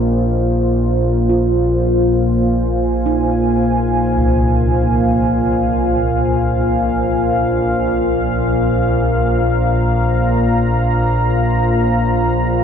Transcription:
Already playing: synth drone A#1 A#2, analog synth pad A#3 F4 C5 D#5
1.29 kettle gongs F4
1.92 analog synth pad G#5
2.15 analog synth pad F5
3.06 kettle gongs D#4
4.17 kettle gongs C2
8.85 analog synth pad A#5

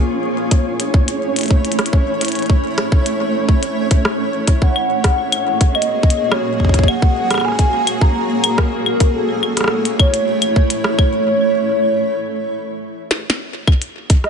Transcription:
Already playing: synth texture C#4 C#5
0.09 ambient pad A3 E4 C#5
0.51 kick, closed hi-hat
0.80 closed hi-hat
0.94 kick
1.08 closed hi-hat
1.36 closed hi-hat
1.39 closed hi-hat
1.41 closed hi-hat
1.43 closed hi-hat
1.48 kick, closed hi-hat
1.65 closed hi-hat
1.72 closed hi-hat
1.79 cross-stick, closed hi-hat
1.86 closed hi-hat
1.93 kick
2.21 closed hi-hat
2.25 closed hi-hat
2.28 closed hi-hat
2.32 closed hi-hat
2.35 closed hi-hat
2.39 closed hi-hat
2.42 closed hi-hat
2.46 kick, closed hi-hat
2.78 cross-stick, closed hi-hat
2.92 kick
3.06 closed hi-hat
3.49 kick
3.63 closed hi-hat
3.91 kick, closed hi-hat
4.05 cross-stick
4.47 kick, closed hi-hat
4.62 ambient pad A#3 F#4 G#4, soft synth lead F#5, kick
4.76 claves
5.04 kick, cross-stick, closed hi-hat
5.32 closed hi-hat, claves
5.61 kick, closed hi-hat
5.75 soft synth lead D#5, claves
5.82 closed hi-hat
6.03 kick
6.10 closed hi-hat
6.32 soft synth lead C#5, cross-stick, claves
6.60 kick
6.65 kick
6.69 kick
6.74 kick, closed hi-hat
6.79 kick
6.83 kick
6.88 soft synth lead F#5, claves
7.02 kick
7.31 cross-stick, closed hi-hat, claves
7.34 cross-stick, claves
7.38 cross-stick, claves
7.41 cross-stick
7.45 soft synth lead G#5, cross-stick
7.48 cross-stick
7.52 cross-stick
7.55 kick, cross-stick, closed hi-hat
7.87 closed hi-hat, claves
8.01 soft synth lead A#5, kick
8.44 closed hi-hat, claves
8.58 soft synth lead A#4, kick, cross-stick
8.86 claves
9.00 kick, closed hi-hat
9.14 ambient pad A3 E4 C#5, soft synth lead A4
9.43 claves
9.57 cross-stick, closed hi-hat
9.61 cross-stick
9.64 cross-stick
9.68 cross-stick
9.85 closed hi-hat
9.99 soft synth lead C#5, kick, claves
10.14 closed hi-hat
10.42 closed hi-hat, claves
10.56 kick
10.70 closed hi-hat
10.84 cross-stick
10.99 kick, claves
13.11 snare
13.30 snare
13.67 ambient pad A#3 F#4 G#4, kick, claves
13.82 closed hi-hat
14.10 kick, closed hi-hat
14.24 soft synth lead D#5, cross-stick

